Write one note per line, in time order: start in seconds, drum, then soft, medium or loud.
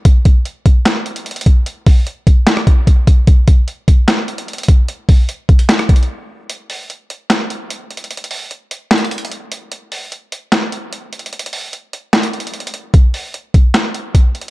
0.05 kick loud
0.05 closed hi-hat medium
0.25 kick loud
0.25 closed hi-hat medium
0.45 closed hi-hat medium
0.66 kick medium
0.66 closed hi-hat medium
0.86 snare loud
0.86 clap medium
0.86 closed hi-hat medium
1.06 closed hi-hat soft
1.16 closed hi-hat medium
1.26 closed hi-hat medium
1.31 closed hi-hat medium
1.36 closed hi-hat medium
1.41 closed hi-hat medium
1.46 kick loud
1.46 closed hi-hat medium
1.66 closed hi-hat medium
1.86 kick loud
1.86 open hi-hat medium
2.07 closed hi-hat medium
2.27 kick medium
2.27 closed hi-hat medium
2.47 snare loud
2.47 clap medium
2.47 closed hi-hat medium
2.57 cross-stick medium
2.67 kick medium
2.67 closed hi-hat medium
2.87 kick medium
2.87 closed hi-hat medium
3.07 kick loud
3.07 closed hi-hat medium
3.27 kick loud
3.27 closed hi-hat medium
3.48 kick loud
3.48 closed hi-hat medium
3.68 closed hi-hat medium
3.88 kick medium
3.88 closed hi-hat medium
4.08 snare loud
4.08 clap medium
4.08 closed hi-hat medium
4.28 closed hi-hat soft
4.38 closed hi-hat medium
4.48 closed hi-hat medium
4.53 closed hi-hat medium
4.58 closed hi-hat medium
4.63 closed hi-hat medium
4.68 kick loud
4.68 closed hi-hat medium
4.88 closed hi-hat medium
5.09 kick loud
5.09 open hi-hat medium
5.29 closed hi-hat medium
5.49 kick loud
5.49 closed hi-hat soft
5.59 closed hi-hat medium
5.69 snare loud
5.69 clap medium
5.69 closed hi-hat medium
5.79 cross-stick medium
5.79 closed hi-hat soft
5.89 kick medium
5.89 closed hi-hat medium
5.96 closed hi-hat medium
6.03 closed hi-hat soft
6.50 closed hi-hat medium
6.70 open hi-hat medium
6.90 closed hi-hat medium
7.10 closed hi-hat medium
7.30 snare loud
7.30 clap medium
7.30 closed hi-hat medium
7.50 closed hi-hat medium
7.70 closed hi-hat medium
7.91 closed hi-hat soft
7.97 closed hi-hat medium
8.04 closed hi-hat medium
8.11 closed hi-hat medium
8.17 closed hi-hat medium
8.24 closed hi-hat medium
8.31 open hi-hat medium
8.51 closed hi-hat medium
8.71 closed hi-hat medium
8.91 snare loud
8.91 clap medium
8.91 closed hi-hat medium
8.98 closed hi-hat medium
9.05 closed hi-hat medium
9.11 closed hi-hat medium
9.18 closed hi-hat medium
9.25 closed hi-hat medium
9.32 closed hi-hat medium
9.52 closed hi-hat medium
9.72 closed hi-hat medium
9.92 open hi-hat medium
10.12 closed hi-hat medium
10.32 closed hi-hat medium
10.52 snare loud
10.52 clap medium
10.52 closed hi-hat medium
10.72 closed hi-hat medium
10.93 closed hi-hat medium
11.13 closed hi-hat soft
11.19 closed hi-hat medium
11.26 closed hi-hat medium
11.33 closed hi-hat medium
11.39 closed hi-hat medium
11.46 closed hi-hat medium
11.53 open hi-hat medium
11.73 closed hi-hat medium
11.93 closed hi-hat medium
12.13 snare loud
12.13 clap medium
12.13 closed hi-hat soft
12.23 closed hi-hat medium
12.33 closed hi-hat soft
12.40 closed hi-hat medium
12.47 closed hi-hat medium
12.54 closed hi-hat soft
12.60 closed hi-hat medium
12.67 closed hi-hat medium
12.74 closed hi-hat medium
12.94 kick loud
12.94 closed hi-hat medium
13.14 open hi-hat medium
13.34 closed hi-hat medium
13.54 kick medium
13.54 closed hi-hat medium
13.74 snare loud
13.74 clap medium
13.74 closed hi-hat medium
13.94 closed hi-hat medium
14.15 kick medium
14.15 closed hi-hat medium
14.35 closed hi-hat soft
14.41 closed hi-hat medium